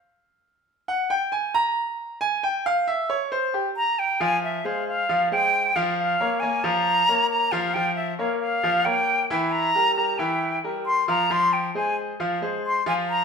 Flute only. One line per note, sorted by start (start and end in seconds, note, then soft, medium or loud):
3.77 4.00 A#5 loud
3.99 4.22 G5 loud
4.21 4.43 G#5 loud
4.44 4.67 E5 medium
4.65 4.88 F5 medium
4.88 5.29 F5 loud
5.32 5.77 G5 loud
5.76 5.97 F5 loud
5.98 6.41 F5 loud
6.40 6.65 G#5 medium
6.64 7.30 A#5 loud
7.31 7.53 A#5 loud
7.52 7.75 F5 medium
7.74 7.95 G5 loud
7.96 8.17 E5 medium
8.18 8.39 F5 medium
8.39 8.86 F5 medium
8.85 9.29 G5 loud
9.30 9.53 G5 medium
9.52 9.95 A#5 loud
9.96 10.20 A#5 medium
10.18 10.59 G5 medium
10.86 11.07 C6 loud
11.09 11.33 A#5 loud
11.32 11.54 C6 loud
11.53 11.75 G5 medium
11.75 11.96 G#5 medium
12.67 12.86 C6 loud
12.88 12.94 G#5 loud
13.10 13.24 A#5 loud